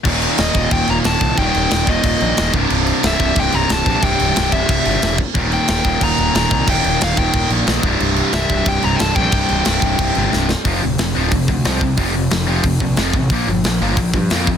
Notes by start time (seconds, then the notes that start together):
0.04 D#1 D#2 A#2 D#3, kick, crash
0.22 crash
0.38 D#1 D#5, snare, crash
0.55 D#1 D#2 A#2 D#3, kick, crash
0.71 D#1 G5, kick, crash
0.87 D#1 A#5, crash
1.04 D#1 D#2 A#2 D#3 A5, snare, crash
1.21 C2, kick, crash
1.37 D#1 D#2 A#2 D#3 G5, kick, crash
1.54 D#1, crash
1.71 D#1 G5, snare, crash
1.87 D#1 A#2 D#3 D#5, kick, crash
1.92 D#2
2.03 D#1 D#5, kick, crash
2.21 A#1, crash
2.37 D#1 D#2 A#2 D#3, snare, crash
2.54 C1 C2 G2 C3, kick, crash
2.70 C1, crash
2.87 crash
3.03 C1 C2 G2 C3 E5, snare, crash
3.20 C1, kick, crash
3.36 C1 G5, kick, crash
3.52 C1 G2 C3 A#5, crash
3.57 C2
3.69 C1 A5, snare, crash
3.86 A#1 C2 G2 C3, kick, crash
4.03 C1 G5, kick, crash
4.20 C1, crash
4.35 C1 C2 G2 C3 G5, snare, crash
4.52 C1 E5, kick, crash
4.69 C1 E5, kick, crash
4.85 G1 C2 G2 C3, crash
5.02 E1, snare, crash
5.18 kick, crash
5.34 D#1 D#2 A#2 D#3, kick, crash
5.52 G5, crash
5.68 D#1 G5, snare, crash
5.84 D#1 A#2 D#3, kick, crash
5.88 D#2
6.01 D#1 A#5, kick, crash
6.18 D#1, crash
6.34 D#1 D#2 A#2 D#3 A#5, snare, crash
6.51 C2, kick, crash
6.66 D#1 D#2 A#2 D#3 G5, kick, crash
6.84 D#1, crash
7.01 D#1 F5, snare, crash
7.16 D#1 D#2 A#2 D#3 G5, kick, crash
7.34 D#1, kick, crash
7.50 A#1, crash
7.67 A#1 D#2 A#2, snare, crash
7.71 D#3
7.83 C1 C2 G2 C3, kick, crash
8.00 C1, crash
8.16 crash
8.33 C1 C2 G2 C3 E5, snare, crash
8.50 C1, kick, crash
8.66 C1 G5, kick, crash
8.82 C1 C2 G2 C3 A#5, crash
8.96 G5 A5, crash
9.00 C1, snare
9.15 A#1 C2 G2 G5, kick, crash
9.20 C3
9.32 C1, kick, crash
9.49 C1, crash
9.65 C1 C2 G2, snare, crash
9.69 C3
9.82 C1, kick, crash
9.99 C1, kick, crash
10.15 G1 G2 C3, crash
10.19 C2
10.33 C1, snare
10.49 snare
10.65 F1 F2 C3 F3, kick, open hi-hat
10.81 D1 F2 C3
10.98 F1 F2 C3, snare, open hi-hat
11.15 D1 F2 C3 F3
11.31 F1 F2 C3, kick, open hi-hat
11.48 D2 F2 C3, kick
11.65 C2 F2 C3 F3, snare, open hi-hat
11.81 F2 C3, kick
11.97 F1 F2 C3 F3, kick, open hi-hat
12.15 F2 C3
12.31 F1 F2 C3, snare, open hi-hat
12.47 F2 C3 F3
12.63 F1 F2 C3, kick, open hi-hat
12.80 A#1 F2 C3, kick
12.96 F1 F2 C3 F3, snare, open hi-hat
13.13 A1 F2 C3, kick
13.30 A#1 A#2 F3 A#3, kick, open hi-hat
13.47 G1 A#2 F3
13.64 A#1 A#2 F3, snare, open hi-hat
13.80 G1 A#2 F3 A#3
13.97 A#1 A#2 F3, kick, open hi-hat
14.14 G2 A#2 F3, kick
14.30 F2 A#2 F3 A#3, snare, open hi-hat
14.47 A#2 F3, kick